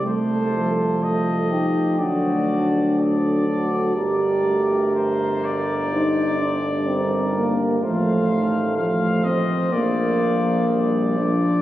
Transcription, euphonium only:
\new Staff \with { instrumentName = "Euphonium" } { \time 4/4 \key g \minor \tempo 4 = 62 a4. ees'8 d'4. fis'8 | g'4. r8 ees'8 d'8 c'8 bes8 | a4. c'8 bes4. d'8 | }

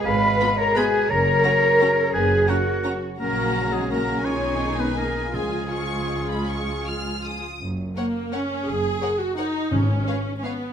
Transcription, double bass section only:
\new Staff \with { instrumentName = "Double bass section" } { \clef bass \time 3/4 \key fis \major \tempo 4 = 168 aes,,4 r2 | fis,,4 r2 | fis,,4 r2 | ais,,2. |
b,,2. | cis,2.~ | cis,2~ cis,8 r8 | fis,,4 r2 |
fis,,4 r2 | gis,,4 r2 | }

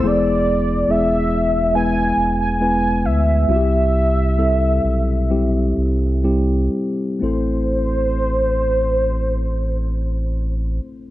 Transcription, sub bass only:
\new Staff \with { instrumentName = "Sub bass" } { \clef bass \time 4/4 \key a \minor \tempo 4 = 65 e,,4 e,,4. e,,4 d,8 | c,4. b,,4 c,4 r8 | a,,1 | }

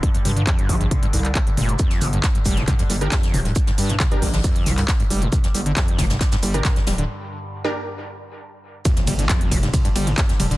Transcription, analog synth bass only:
\new Staff \with { instrumentName = "Analog synth bass" } { \clef bass \time 4/4 \key g \minor \tempo 4 = 136 r8 g,8 r8 bes,,8 r8 c,8 r8 f,,8 | r8 g,,8 r8 f,,8 r8 g,,8 r8 d,,8 | r8 g,8 r8 bes,,8 r8 c,8 r8 f,,8 | r8 g,,8 r8 f,,8 r8 g,,8 r8 d,,8 |
r1 | r8 g,,8 r8 f,,8 r8 g,,8 r8 d,,8 | }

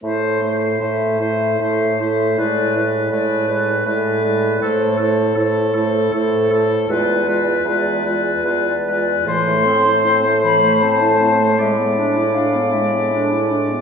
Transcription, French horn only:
\new Staff \with { instrumentName = "French horn" } { \clef bass \time 3/4 \key a \minor \tempo 4 = 78 a8 a8 a8 a8 a8 a8 | gis8 gis8 gis8 gis8 gis8 gis8 | a8 a8 a8 a8 a8 a8 | gis8 gis8 gis8 gis8 gis8 gis8 |
a2. | gis2. | }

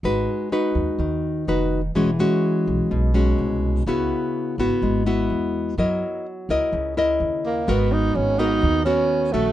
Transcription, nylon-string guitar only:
\new Staff \with { instrumentName = "Nylon-string guitar" } { \time 4/4 \key gis \minor \tempo 4 = 126 << { <dis' fis' b'>4 <dis' fis' b'>2 <dis' fis' b'>8 r8 | <gis cis' fis'>8 <gis cis' fis'>2 <gis cis' fis'>4. | <b e' fis'>4. <b e' fis'>4 <b e' fis'>4. | <e' ais' dis''>4 r8 <e' ais' dis''>4 <e' ais' dis''>4. |
<b fis' ais'>4. <b fis' ais'>4 <b fis' ais'>4 <a cis' fis'>8 | } \\ { gis2 dis2 | e2 b,2 | cis2 gis2 | fis2 cis2 |
gis2 dis2 | } >> }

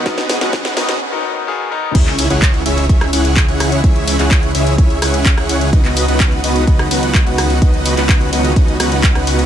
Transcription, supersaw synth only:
\new Staff \with { instrumentName = "Supersaw synth" } { \time 4/4 \key cis \minor \tempo 4 = 127 <b dis' fis' dis''>8. <b dis' fis' b' fis''>8. <b dis' fis' b' dis''>8 r2 | <cis' e' gis' cis'' e''>8. <cis' e' gis' cis'' fis''>8. <cis' e' gis' cis'' e''>8 <cis' gis' cis''>8 <cis' e' gis' cis'' fis''>8. <cis' e' gis' cis'' fis''>8. | <e' gis' cis'' e''>8. <cis' e' gis' cis'' fis''>8. <cis' e' gis' cis'' e''>8 <cis' e' gis' cis'' e''>8 <cis' e' gis' cis'' fis''>8. <cis' e' gis' cis'' fis''>8. | <b dis' fis' b' dis''>8. <b dis' fis' b' fis''>8. <b dis' fis' b' dis''>8 <b b'>8 <b dis' fis' b' fis''>8. <b dis' fis' b' fis''>8. |
<b dis' fis' b' dis''>8. <b dis' fis' b' fis''>8. <b dis' fis' b' dis''>8 <b dis' b' dis''>8 <b dis' fis' b' fis''>8. <b dis' fis' b' fis''>8. | }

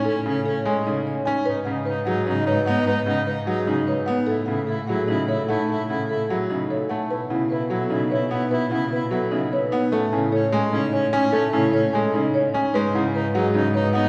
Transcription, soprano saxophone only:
\new Staff \with { instrumentName = "Soprano saxophone" } { \time 7/8 \key b \mixolydian \tempo 4 = 149 cis'8 cis'8 cis'8 cis'8 cis'8 cis'8 r8 | dis'8 dis'8 dis'8 dis'8 dis'8 dis'8 dis'8 | dis'8 dis'8 dis'8 dis'8 dis'8 dis'8 r8 | e'8 e'8 e'8 e'8 e'8 e'8 e'8 |
e'8 e'8 e'8 e'8 e'8 e'8 r8 | e'8 e'8 e'8 e'8 e'8 e'8 e'8 | e'8 e'8 e'8 e'8 e'8 e'8 r8 | cis'8 cis'8 cis'8 cis'8 cis'8 cis'8 cis'8 |
cis'8 cis'8 cis'8 cis'8 cis'8 cis'8 r8 | dis'8 dis'8 dis'8 dis'8 dis'8 dis'8 dis'8 | }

